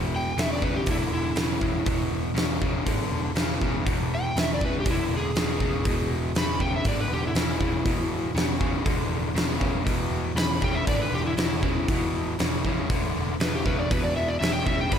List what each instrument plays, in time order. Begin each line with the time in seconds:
Already playing: picked electric bass E1, overdriven electric guitar E2 B2
0.16 electric slide guitar G5
0.37 picked electric bass E1, overdriven electric guitar E2 C#3, electric slide guitar E5, snare, open hi-hat
0.53 electric slide guitar D5
0.62 overdriven electric guitar E2 C#3, electric slide guitar B4, kick
0.76 electric slide guitar G4
0.86 picked electric bass E1, overdriven electric guitar E2 D3, kick, open hi-hat
0.91 electric slide guitar E4
1.10 picked electric bass E1
1.14 electric slide guitar E4
1.35 picked electric bass E1, overdriven electric guitar E2 C#3, snare, open hi-hat
1.61 picked electric bass E1, overdriven electric guitar E2 C#3, kick
1.85 picked electric bass E1, overdriven electric guitar E2 B2, kick, open hi-hat
2.11 picked electric bass E1
2.34 picked electric bass E1, overdriven electric guitar E2 C#3, snare, open hi-hat
2.61 picked electric bass E1, overdriven electric guitar E2 C#3, kick
2.84 picked electric bass G#1, overdriven electric guitar E2 D3, kick, open hi-hat
3.10 picked electric bass E1
3.34 picked electric bass E1, overdriven electric guitar E2 C#3, snare, open hi-hat
3.61 picked electric bass E1, overdriven electric guitar E2 C#3, kick
3.85 picked electric bass E1, overdriven electric guitar E2 B2, kick, open hi-hat
4.15 electric slide guitar G5
4.36 picked electric bass E1, overdriven electric guitar E2 C#3, electric slide guitar E5, snare, open hi-hat
4.54 electric slide guitar D5
4.61 overdriven electric guitar E2 C#3, electric slide guitar B4, kick
4.80 electric slide guitar G4
4.85 picked electric bass E1, overdriven electric guitar E2 D3, kick, open hi-hat
4.90 electric slide guitar E4
5.09 picked electric bass E1
5.17 electric slide guitar G#4
5.35 picked electric bass E1, overdriven electric guitar E2 C#3, snare, open hi-hat
5.60 picked electric bass E1, overdriven electric guitar E2 C#3, kick
5.85 picked electric bass E1, overdriven electric guitar E2 B2, kick, open hi-hat
6.09 picked electric bass E1
6.35 picked electric bass E1, overdriven electric guitar E2 C#3, electric slide guitar B5, snare, open hi-hat
6.60 picked electric bass E1, overdriven electric guitar E2 C#3, electric slide guitar G5, kick
6.76 electric slide guitar E5
6.84 picked electric bass G#1, overdriven electric guitar E2 D3, electric slide guitar D5, kick, open hi-hat
7.00 electric slide guitar B4
7.08 picked electric bass E1
7.13 electric slide guitar G4
7.27 electric slide guitar E4
7.33 picked electric bass E1, overdriven electric guitar E2 C#3, snare, open hi-hat
7.38 electric slide guitar E4
7.60 picked electric bass E1, overdriven electric guitar E2 C#3, kick
7.85 picked electric bass E1, overdriven electric guitar E2 B2, kick, open hi-hat
8.34 picked electric bass E1, overdriven electric guitar E2 C#3, snare, open hi-hat
8.60 overdriven electric guitar E2 C#3, kick
8.85 picked electric bass E1, overdriven electric guitar E2 D3, kick, open hi-hat
9.07 picked electric bass E1
9.34 picked electric bass E1, overdriven electric guitar E2 C#3, snare, open hi-hat
9.59 picked electric bass E1, overdriven electric guitar E2 C#3, kick
9.84 picked electric bass E1, overdriven electric guitar E2 B2, kick, open hi-hat
10.09 picked electric bass E1
10.35 picked electric bass E1, overdriven electric guitar E2 C#3, electric slide guitar B5, snare, open hi-hat
10.61 picked electric bass E1, overdriven electric guitar E2 C#3, electric slide guitar G5, kick
10.75 electric slide guitar E5
10.87 picked electric bass G#1, overdriven electric guitar E2 D3, electric slide guitar D5, kick, open hi-hat
11.01 electric slide guitar B4
11.12 picked electric bass E1, electric slide guitar G4
11.26 electric slide guitar E4
11.37 picked electric bass E1, overdriven electric guitar E2 C#3, electric slide guitar E4, snare, open hi-hat
11.63 picked electric bass E1, overdriven electric guitar E2 C#3, kick
11.88 picked electric bass E1, overdriven electric guitar E2 B2, kick, open hi-hat
12.39 picked electric bass E1, overdriven electric guitar E2 C#3, snare, open hi-hat
12.65 overdriven electric guitar E2 C#3, kick
12.90 picked electric bass E1, overdriven electric guitar E2 D3, kick, open hi-hat
13.15 picked electric bass E1
13.40 picked electric bass E1, overdriven electric guitar E2 C#3, electric slide guitar B4, snare, open hi-hat
13.55 electric slide guitar G4
13.65 picked electric bass E1, overdriven electric guitar E2 C#3, electric slide guitar B4, kick
13.79 electric slide guitar D5
13.90 picked electric bass E1, overdriven electric guitar E2 B2, electric slide guitar B4, kick, open hi-hat
14.04 electric slide guitar D5
14.16 picked electric bass E1, electric slide guitar E5
14.28 electric slide guitar D5
14.40 picked electric bass E1, overdriven electric guitar E2 C#3, electric slide guitar E5, snare, open hi-hat
14.52 electric slide guitar G5
14.66 picked electric bass E1, overdriven electric guitar E2 C#3, electric slide guitar E5, kick
14.81 electric slide guitar G5
14.90 picked electric bass G#1, overdriven electric guitar E2 D3, electric slide guitar B5, kick, open hi-hat